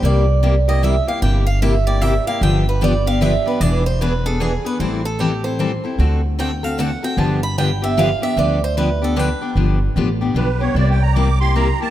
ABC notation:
X:1
M:3/4
L:1/16
Q:"Swing" 1/4=151
K:Gmix
V:1 name="Accordion"
z12 | z12 | z12 | z12 |
z12 | z12 | z12 | z12 |
z8 B2 ^c2 | (3d2 g2 _b2 d'2 c'2 b2 a2 |]
V:2 name="Steel-string acoustic guitar"
d4 z2 _e2 =e2 f2 | g2 f2 e2 d2 e2 f2 | g2 B2 d2 f2 e2 B2 | d2 c2 B2 A2 ^G2 B2 |
c2 A2 G2 c6 | z4 g2 f2 ^f2 g2 | a2 b2 g2 e2 f2 e2 | d2 c2 B2 A2 B3 z |
z12 | z12 |]
V:3 name="Steel-string acoustic guitar"
[C,G,_B,EG]2 z2 [C,G,B,EG]2 [B,EG]2 [C,G,B,EG]2 [B,EG]2 | [C,G,_B,EG]2 z2 [C,G,B,EG]2 [B,EG]2 [C,G,B,EG]2 [B,EG]2 | [D,F,B,DG]2 z2 [D,F,B,DG]2 [B,DG]2 [D,F,B,DG]2 [B,DG]2 | [E,B,D^G]2 z2 [E,B,DG]2 [B,DG]2 [E,B,DG]2 [B,DG]2 |
[E,G,CEA]2 z2 [E,G,CEA]2 [CEA]2 [E,G,CEA]2 [CEA]2 | [D,A,C^FA]2 z2 [D,A,CFA]2 [CFA]2 [D,A,CFA]2 [CFA]2 | [D,F,B,DG]2 z2 [D,F,B,DG]2 [B,DG]2 [D,F,B,DG]2 [B,DG]2 | [D,F,B,DG]2 z2 [D,F,B,DG]2 [B,DG]2 [D,F,B,DG]2 [B,DG]2 |
[D,F,B,DG]2 z2 [D,F,B,DG]2 [B,DG]2 [D,F,B,DG]2 [B,DG]2 | [C,G,_B,EG]2 z2 [C,G,B,EG]2 [B,EG]2 [C,G,B,EG]2 [B,EG]2 |]
V:4 name="Steel-string acoustic guitar"
[C,G,_B,EG]2 z2 [C,G,B,EG]2 z2 [C,G,B,EG]2 z2 | [C,G,_B,EG]2 z2 [C,G,B,EG]2 z2 [C,G,B,EG]2 z2 | [D,F,B,DG]2 z2 [D,F,B,DG]2 z2 [D,F,B,DG]2 z2 | [E,B,D^GB]2 z2 [E,B,DGB]2 z2 [E,B,DGB]2 z2 |
[E,G,CEA]2 z2 [E,G,CEA]2 z2 [E,G,CEA]2 z2 | [D,A,C^FA]2 z2 [D,A,CFA]2 z2 [D,A,CFA]2 z2 | [D,F,B,DG]2 z2 [D,F,B,DG]2 z2 [D,F,B,DG]2 z2 | [D,F,B,DG]2 z2 [D,F,B,DG]2 z2 [D,F,B,DG]2 z2 |
z12 | z12 |]
V:5 name="Upright bass" clef=bass
C,,12 | G,,,12 | G,,,12 | E,,,12 |
A,,,12 | D,,12 | G,,,12 | D,,12 |
G,,,4 A,,,4 B,,,4 | C,,12 |]